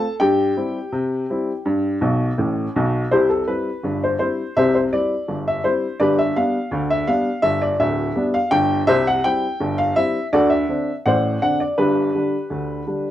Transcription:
Already playing: A4 A5
0.20 G2 G4 G5
0.57 G3 C4 E4
0.92 C3
1.30 G3 C4 E4
1.66 G2
2.01 B1 B2
2.38 A1 A2
2.76 B1 B2
3.11 C2 C3 E4 G4 C5
3.30 A4
3.48 G3 C4 E4 B4
3.83 G1 G2
4.04 C5
4.19 G3 C4 E4 C5
4.56 C2 C3 G4 C5 E5
4.75 C5
4.93 G3 C4 E4 D5
5.28 G1 G2
5.48 E5
5.64 G3 C4 E4 C5
6.00 G1 G2 G4 B4 D5
6.19 E5
6.36 G3 B3 D4 F5
6.71 D2 D3
6.90 E5
7.07 G3 B3 D4 F5
7.42 G1 G2 E5
7.62 D5
7.80 D1 D2 E5
8.16 G3 B3 D4
8.34 F5
8.51 G1 G2 G5
8.87 C2 C3 G4 C5 E5
9.07 F#5
9.24 G3 C4 E4 G5
9.60 G1 G2
9.78 F5
9.96 G3 C4 E4 E5
10.33 D2 D3 F#4 A4 D5
10.50 E5
10.69 D3 C4 D4
11.06 A1 A2 C5 D5 F#5
11.42 D3 C4 D4 F#5
11.60 D5
11.78 G1 G2 D4 G4 B4
12.15 D3 G3 D4
12.50 D2 D3
12.87 D3 G3 D4

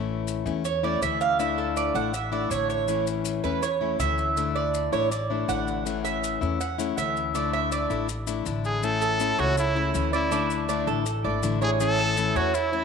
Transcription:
Already playing: A1 E3 A3 C#4 E4
0.28 maracas
0.46 E2 A3 C#4 E4, maracas
0.65 C#5, muted steel-string acoustic guitar stroke, maracas
0.83 A3 C#4 E4 D5
1.02 D2 E3 A3 C#4 E4 E5, maracas
1.21 F5, maracas
1.39 D3 A3 D4 E4 E5, maracas
1.58 A4
1.77 D5, maracas
1.94 A1 A3 D4 E4 F#5, maracas
2.13 E5, muted steel-string acoustic guitar stroke, maracas
2.32 A3 D4 E4 D5
2.50 A1 D3 A3 D4 E4 C#5, maracas
2.70 C#5, maracas
2.88 E3 A3 C#4 E4, maracas
3.07 maracas
3.25 maracas
3.44 E2 A3 C#4 E4 B4, maracas
3.63 C#5, muted steel-string acoustic guitar stroke, maracas
3.81 A3 C#4 E4
3.99 D2 E3 A3 C#4 E4 E5, maracas
4.18 maracas
4.36 D3 A3 D4 E4, maracas
4.56 D5
4.74 maracas
4.92 A1 A3 D4 E4 C#5, maracas
5.11 D5, muted steel-string acoustic guitar stroke, maracas
5.30 A3 D4 E4
5.48 A1 D3 A3 D4 E4 F#5, maracas
5.68 maracas
5.85 E3 A3 C#4 E4, maracas
6.05 E5, maracas
6.24 maracas
6.41 E2 A3 C#4 E4, maracas
6.60 F#5, muted steel-string acoustic guitar stroke, maracas
6.78 A3 C#4 E4, maracas
6.97 D2 E3 A3 C#4 E4 E5, maracas
7.17 maracas
7.34 D3 A3 D4 E4 D5, maracas
7.53 E5
7.72 D5, maracas
7.90 A1 A3 D4 E4, maracas
8.09 muted steel-string acoustic guitar stroke, maracas
8.27 A3 D4 E4, maracas
8.46 A1 D3 A3 D4 E4, maracas
8.64 G#4, maracas
8.83 E3 A3 C#4 E4 A4, maracas
9.02 A4, maracas
9.20 E3 A3 C#4 E4, maracas
9.38 C#2 F#4 C#5, maracas
9.57 E4, muted steel-string acoustic guitar stroke, maracas
9.75 A3 C#4 E4
9.94 D2 E3 A3 C#4 E4, maracas
10.12 A3 C#4 E4 D5, maracas
10.31 D3 A3 D4 E4, maracas
10.50 maracas
10.68 D3 A3 D4 E4 D5, maracas
10.87 A1 A4, maracas
11.06 muted steel-string acoustic guitar stroke, maracas
11.24 G#1 A3 D4 E4 D5
11.43 A1 D3 A3 D4 E4, maracas
11.61 A3 D4 E4 G#4 C#5, maracas
11.80 E3 A3 C#4 E4 A4, maracas
11.99 A4
12.17 E3 A3 C#4 E4, maracas
12.35 E2 F#4 C#5, maracas
12.54 E4, maracas
12.73 A3 C#4 E4

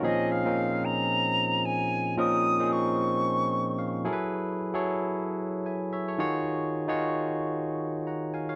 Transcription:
0.03 A#2 F3 C4 C#4 D#4 G#4 D#5
0.31 F5
0.45 A#2 F3 C4 C#4 D#4 A#4
0.84 A#5
1.65 G#5
2.17 A#2 F3 C4 C#4 D#4 A#4 D#6
2.59 A#2 F3 C4 C#4 D#4 G#4
2.72 C#6
3.79 F5
4.04 F#3 E4 G#4 A4 A#4 G#5
4.13 B4
4.74 F#3 E4 G#4 A4 C#5
5.66 E5 G#5
5.93 C#5 E5
6.08 A4 C#5
6.18 D#3 D#4 F4 F#4 G#4 C#5
6.88 D#3 D#4 F4 F#4 G#4 C#5
8.07 F#5 A#5
8.34 F5 G#5
8.49 C#5 F5

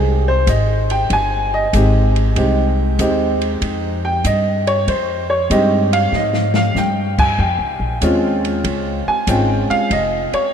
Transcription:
Already playing: C2 G#3 C4 G#4
0.28 C5
0.47 G#1 D#5, kick, hi-hat pedal, ride
0.90 G5, ride
1.10 G1 G#5, kick, ride
1.54 D#5
1.73 G#1 G#3 C4 D#4 G4, kick, hi-hat pedal, ride
2.16 ride
2.36 C2 G#3 C4 D#4 G4, kick, ride
2.99 D#2 G#3 C4 D#4 G4, kick, hi-hat pedal, ride
3.41 ride
3.61 F2, kick, ride
4.05 G5
4.24 G2 D#5, kick, hi-hat pedal, ride
4.67 C#5, ride
4.87 F2 C5, kick, ride
5.30 C#5
5.50 G2 G#3 C4 D#4 G4 D#5, kick, hi-hat pedal, ride
5.93 F5, ride
6.12 G#2 D#5, snare
6.33 snare
6.54 F5, snare
6.75 G2 G5, snare, hi-hat pedal
7.18 G#5, kick, crash
7.38 F2 G5, kick
7.58 C#2
7.79 A#1
8.01 D#2 G#3 C4 C#4 F4, kick, hi-hat pedal, ride
8.45 ride
8.64 C#2, kick, ride
9.07 G#5, muted upright bass stroke
9.27 G#1 G#3 C4 C#4 F4 G5, kick, hi-hat pedal, ride
9.70 F5, muted upright bass stroke, ride
9.90 F1 D#5, kick, ride
10.32 C#5, muted upright bass stroke, ride

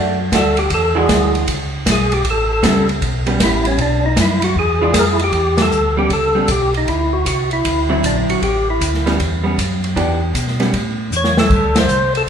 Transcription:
Already playing: F#2 A3 D4 F#4
0.32 D2 A3 D4 F#4 A4, kick, snare, hi-hat pedal, ride
0.57 G4, ride
0.70 E2 A4, kick, ride
0.95 E3 G#3 D4 F#4 G#4
1.09 D2, kick, snare, hi-hat pedal, ride
1.35 ride
1.47 C#2, kick, ride
1.86 B1, kick, snare, hi-hat pedal, ride
1.91 G#4
2.12 G4, ride
2.24 A1, kick, ride
2.30 A4
2.53 A4
2.63 C#2 G3 B3 C#4, kick, snare, hi-hat pedal, ride
2.89 ride
3.01 B1, kick, ride
3.26 G3 B3 C#4, ride
3.40 A1 E4, kick, snare, hi-hat pedal, ride
3.65 C#4, ride
3.78 B1 D4, kick, ride
4.06 D#4
4.16 F#2, kick, snare, hi-hat pedal, ride
4.21 E4
4.42 F#4, ride
4.55 E2, kick
4.59 G#4
4.82 E3 G#3 D4 F4
4.93 F2, kick, snare, hi-hat pedal, ride
4.99 A#4
5.13 E4
5.19 ride
5.24 G4
5.32 E2, kick, ride
5.58 snare, ride
5.62 A4
5.72 D2, hi-hat pedal
5.97 G3 B3 C#4 G4
6.09 C#2 A4, kick, ride
6.35 G3 B3 C#4
6.48 B1 G4, kick, hi-hat pedal, ride
6.74 D#4, ride
6.86 D2 E4, kick, ride
7.13 F#4
7.25 C2 F#4, kick, hi-hat pedal, ride
7.51 E4, ride
7.65 D2, kick, ride
7.89 D3 F#3 C4 E4
8.03 A#1 D4, kick, hi-hat pedal, ride
8.29 A#1 F#4, ride
8.42 A1 G4, kick, ride
8.70 E4
8.81 D2, kick, hi-hat pedal, ride
8.94 snare
9.06 G3 B3 C#4, snare, ride
9.19 E2, kick, ride
9.44 G3 B3 C#4
9.58 F#2, kick, hi-hat pedal, ride
9.84 ride
9.95 E2 E3 B3 D4 G4, kick, ride
10.34 B2, kick, hi-hat pedal, ride
10.47 snare
10.60 G3 B3 C#4, snare, ride
10.73 A2, kick, ride
11.10 E2, hi-hat pedal
11.16 C#5
11.24 snare
11.37 A4, snare
11.49 D2, kick, crash
11.75 C5, snare, ride
11.87 C2, hi-hat pedal
12.15 A4, ride

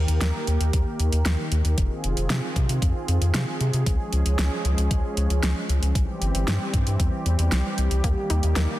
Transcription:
Already playing: D#3 A#3 G4 A#4
0.08 D#2, closed hi-hat
0.21 D#2, snare, closed hi-hat
0.47 D#2, closed hi-hat
0.60 D#2, closed hi-hat
0.73 D#2, kick, closed hi-hat
1.00 D#2, closed hi-hat
1.12 D#2, closed hi-hat
1.26 D#2, snare, closed hi-hat
1.52 D#2, closed hi-hat
1.65 D#2, closed hi-hat
1.77 F1 C4 F4 G#4, kick, closed hi-hat
2.04 F1, closed hi-hat
2.17 F1, closed hi-hat
2.30 C3, snare, closed hi-hat
2.56 C3, kick, closed hi-hat
2.69 C3, closed hi-hat
2.82 F2, kick, closed hi-hat
3.08 F2, closed hi-hat
3.21 F2, closed hi-hat
3.34 C3, snare, closed hi-hat
3.61 C3, closed hi-hat
3.73 C3, closed hi-hat
3.86 C#2 F3 G#3 C#4, kick, closed hi-hat
4.13 C#2, closed hi-hat
4.26 C#2, closed hi-hat
4.39 C#2, snare, closed hi-hat
4.65 C#2, closed hi-hat
4.78 C#2, closed hi-hat
4.91 C#2, kick, closed hi-hat
5.17 C#2, closed hi-hat
5.30 C#2, closed hi-hat
5.43 C#2, snare, closed hi-hat
5.69 C#2, closed hi-hat
5.82 C#2, closed hi-hat
5.95 C2 E3 G3 C4 G4, kick, closed hi-hat
6.21 G1, closed hi-hat
6.34 G1, closed hi-hat
6.48 G2, snare, closed hi-hat
6.74 G2, kick, closed hi-hat
6.87 G2, closed hi-hat
7.00 E2, kick, closed hi-hat
7.26 E2, closed hi-hat
7.39 E2, closed hi-hat
7.52 C2, snare, closed hi-hat
7.78 C2, closed hi-hat
7.91 C2, closed hi-hat
8.04 D#2 D#3 A#3, kick, closed hi-hat
8.30 D#2 D#4, closed hi-hat
8.43 D#2, closed hi-hat
8.56 D#2 D#3, snare, closed hi-hat

